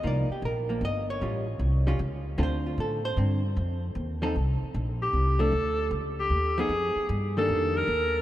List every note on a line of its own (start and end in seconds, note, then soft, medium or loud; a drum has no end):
0.03 0.28 C2 medium
0.03 0.27 F3 medium
0.03 0.27 A#3 medium
0.03 0.27 D#4 medium
0.03 0.31 D5 medium
0.29 0.43 G4 soft
0.29 muted upright bass stroke soft
0.42 0.80 A#1 medium
0.42 0.69 A#4 medium
0.69 0.81 F3 medium
0.69 0.81 A#3 medium
0.81 1.19 G1 medium
0.81 1.09 D#5 loud
1.10 1.97 C#5 medium
1.21 1.59 A1 medium
1.21 1.45 G3 medium
1.21 1.45 C#4 medium
1.21 1.46 F4 medium
1.59 1.98 C2 medium
1.87 1.99 G3 medium
1.87 1.99 C#4 medium
1.87 1.99 F4 medium
1.99 2.37 C#2 medium
2.38 2.76 D2 loud
2.38 2.99 D3 medium
2.38 2.99 C4 medium
2.38 2.65 F4 medium
2.38 2.43 A4 medium
2.43 2.66 C5 medium
2.66 2.78 F4 soft
2.78 3.16 A2 medium
2.78 3.05 A4 medium
3.05 3.17 C5 loud
3.17 3.55 G2 medium
3.17 3.41 D3 medium
3.17 3.41 C4 medium
3.57 3.95 F2 medium
3.95 4.34 D#2 medium
4.22 4.34 F3 medium
4.22 4.34 C4 medium
4.22 4.34 D#4 medium
4.22 4.34 A4 medium
4.35 4.60 C2 medium
4.62 muted upright bass stroke soft
4.74 5.13 A#1 loud
5.02 5.42 G4 medium
5.13 5.52 C2 medium
5.39 5.51 F3 medium
5.39 5.52 A3 medium
5.39 5.52 D4 medium
5.39 5.92 A4 loud
5.52 5.90 D2 medium
5.91 6.29 C#2 medium
6.19 6.56 G4 medium
6.30 6.68 D#2 medium
6.58 6.70 F3 medium
6.58 6.70 B3 medium
6.58 6.71 D#4 medium
6.58 7.08 G#4 medium
6.69 6.94 F2 medium
6.96 muted upright bass stroke soft
7.09 7.48 G2 loud
7.37 7.87 D#3 medium
7.37 7.87 G3 medium
7.37 7.87 A#3 medium
7.37 7.87 D4 medium
7.37 7.79 A4 medium
7.48 7.87 F2 medium
7.78 8.22 A#4 loud
7.88 8.22 D#2 medium